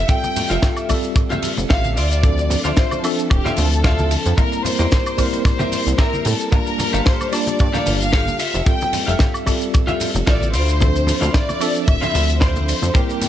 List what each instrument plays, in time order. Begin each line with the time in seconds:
Already playing: clean electric guitar F4 G4 A4 E5
0.08 tine electric piano G3 C4 F4 A4 E5, violin section G5, kick, closed hi-hat, shaker
0.24 muted clean electric guitar stroke, closed hi-hat, muted conga, shaker
0.36 muted clean electric guitar stroke, open hi-hat, ride, low conga, shaker
0.50 analog synth bass F1, clean electric guitar F4 G4 A4 E5, closed hi-hat, shaker
0.62 kick, snare, closed hi-hat, muted conga, shaker
0.76 closed hi-hat, high woodblock, shaker
0.88 tine electric piano G3 C4 F4 A4 E5, kick, open hi-hat, ride, muted conga, high woodblock, shaker
1.04 closed hi-hat, shaker
1.16 kick, closed hi-hat, high woodblock, shaker
1.30 clean electric guitar F4 G4 A4 E5, closed hi-hat, muted conga, high conga, low conga, shaker
1.42 open hi-hat, ride, low conga, shaker
1.57 analog synth bass F1, closed hi-hat, muted conga, shaker
1.69 analog synth bass A1, clean electric guitar F4 G4 A4 E5, violin section F5, kick, snare, closed hi-hat, shaker
1.84 closed hi-hat, high conga, shaker
1.96 analog synth bass D2, clean electric guitar F4 C5 D5 E5, violin section D5, open hi-hat, ride, muted conga, shaker
2.11 closed hi-hat, shaker
2.23 tine electric piano F3 C4 D4 A4 E5, kick, closed hi-hat, muted conga, shaker
2.38 muted clean electric guitar stroke, closed hi-hat, shaker
2.50 muted clean electric guitar stroke, open hi-hat, ride, low conga, shaker
2.64 analog synth bass D2, clean electric guitar F4 C5 D5 E5, closed hi-hat, muted conga, shaker
2.76 violin section C5, kick, snare, closed hi-hat, shaker
2.91 closed hi-hat, muted conga, high woodblock, shaker
3.03 tine electric piano F3 C4 D4 A4 E5, violin section A4, open hi-hat, ride, high woodblock, shaker
3.19 closed hi-hat, shaker
3.30 analog synth bass D1, violin section G4, kick, closed hi-hat, muted conga, high woodblock, shaker
3.44 clean electric guitar F4 C5 D5 E5, snare, closed hi-hat, high conga, low conga, shaker
3.56 analog synth bass D2, violin section A4, open hi-hat, ride, muted conga, low conga, shaker
3.72 closed hi-hat, shaker
3.84 clean electric guitar F4 C5 D5 E5, kick, snare, closed hi-hat, shaker
3.98 closed hi-hat, muted conga, high conga, shaker
4.11 open hi-hat, ride, shaker
4.25 analog synth bass F2, closed hi-hat, muted conga, shaker
4.37 tine electric piano G3 A#3 C4 E4 A#4, violin section A#4, muted clean electric guitar stroke, kick, closed hi-hat, shaker
4.52 muted clean electric guitar stroke, closed hi-hat, shaker
4.65 violin section C5, muted clean electric guitar stroke, open hi-hat, ride, muted conga, low conga, shaker
4.79 analog synth bass E2, clean electric guitar G4 A#4 C5 D5, closed hi-hat, shaker
4.91 kick, snare, closed hi-hat, muted conga, shaker
5.06 closed hi-hat, high woodblock, shaker
5.18 tine electric piano G3 A#3 C4 E4 A#4, kick, open hi-hat, ride, high woodblock, shaker
5.33 closed hi-hat, muted conga, shaker
5.45 violin section C5, kick, snare, closed hi-hat, high woodblock, shaker
5.59 clean electric guitar G4 A#4 C5 E5, closed hi-hat, muted conga, high conga, low conga, shaker
5.72 open hi-hat, ride, low conga, shaker
5.87 analog synth bass C2, closed hi-hat, shaker
5.98 clean electric guitar G4 A#4 C5 E5, violin section A#4, kick, snare, closed hi-hat, muted conga, shaker
6.13 closed hi-hat, high conga, shaker
6.25 analog synth bass A2, violin section A4, open hi-hat, ride, muted conga, shaker
6.40 closed hi-hat, shaker
6.52 tine electric piano G3 A#3 D4 F4 A5, violin section A#4, muted clean electric guitar stroke, kick, closed hi-hat, muted conga, shaker
6.67 muted clean electric guitar stroke, closed hi-hat, shaker
6.78 muted clean electric guitar stroke, open hi-hat, ride, muted conga, low conga, shaker
6.93 analog synth bass G1, clean electric guitar G4 A4 A#4 F5, closed hi-hat, shaker
7.06 violin section C5, kick, snare, closed hi-hat, shaker
7.21 closed hi-hat, muted conga, high woodblock, shaker
7.32 tine electric piano G3 A#3 D4 F4 A5, violin section D5, open hi-hat, ride, high woodblock, shaker
7.47 closed hi-hat, muted conga, shaker
7.59 analog synth bass G2, kick, closed hi-hat, high woodblock, shaker
7.73 clean electric guitar G4 A4 A#4 F5, snare, closed hi-hat, high conga, low conga, shaker
7.86 analog synth bass G1, open hi-hat, ride, muted conga, low conga, shaker
8.00 violin section F5, closed hi-hat, shaker
8.12 clean electric guitar G4 A4 A#4 F5, kick, snare, closed hi-hat, muted conga, shaker
8.27 closed hi-hat, high conga, shaker
8.39 clean electric guitar F4 G4 A4 E5, violin section E5, open hi-hat, ride, shaker
8.54 analog synth bass F1, closed hi-hat, muted conga, shaker
8.66 tine electric piano G3 C4 F4 A4 E5, violin section G5, kick, closed hi-hat, shaker
8.81 muted clean electric guitar stroke, closed hi-hat, muted conga, shaker
8.93 muted clean electric guitar stroke, open hi-hat, ride, low conga, shaker
9.07 analog synth bass F1, clean electric guitar F4 G4 A4 E5, closed hi-hat, shaker
9.19 kick, snare, closed hi-hat, muted conga, shaker
9.34 closed hi-hat, high woodblock, shaker
9.46 tine electric piano G3 C4 F4 A4 E5, kick, open hi-hat, ride, muted conga, high woodblock, shaker
9.61 closed hi-hat, shaker
9.74 kick, closed hi-hat, high woodblock, shaker
9.87 clean electric guitar F4 G4 A4 E5, closed hi-hat, muted conga, high conga, low conga, shaker
10.00 open hi-hat, ride, low conga, shaker
10.14 analog synth bass F1, closed hi-hat, muted conga, shaker
10.26 analog synth bass A1, clean electric guitar F4 G4 A4 E5, violin section D5, kick, snare, closed hi-hat, shaker
10.41 closed hi-hat, high conga, shaker
10.53 analog synth bass D2, clean electric guitar E4 F4 C5 D5, violin section C5, open hi-hat, ride, muted conga, shaker
10.68 closed hi-hat, shaker
10.80 tine electric piano F3 C4 D4 A4 E5, kick, closed hi-hat, muted conga, shaker
10.95 muted clean electric guitar stroke, closed hi-hat, shaker
11.07 muted clean electric guitar stroke, open hi-hat, ride, low conga, shaker
11.21 analog synth bass D2, clean electric guitar E4 F4 C5 D5, closed hi-hat, muted conga, shaker
11.34 violin section D5, kick, snare, closed hi-hat, shaker
11.49 closed hi-hat, muted conga, high woodblock, shaker
11.60 tine electric piano F3 C4 D4 A4 E5, open hi-hat, ride, high woodblock, shaker
11.74 closed hi-hat, shaker
11.88 analog synth bass D1, violin section E5, kick, closed hi-hat, muted conga, high woodblock, shaker
12.01 clean electric guitar E4 F4 C5 E5, snare, closed hi-hat, high conga, low conga, shaker
12.14 analog synth bass D2, open hi-hat, ride, muted conga, low conga, shaker
12.29 closed hi-hat, shaker
12.40 clean electric guitar E4 F4 C5 D5, violin section C5, kick, snare, closed hi-hat, shaker
12.56 closed hi-hat, muted conga, high conga, shaker
12.68 open hi-hat, ride, shaker
12.82 analog synth bass F2, closed hi-hat, muted conga, shaker
12.94 tine electric piano G3 A#3 C4 E4 A#4, violin section G4, muted clean electric guitar stroke, kick, closed hi-hat, shaker
13.09 muted clean electric guitar stroke, closed hi-hat, shaker
13.21 muted clean electric guitar stroke, open hi-hat, ride, muted conga, low conga, shaker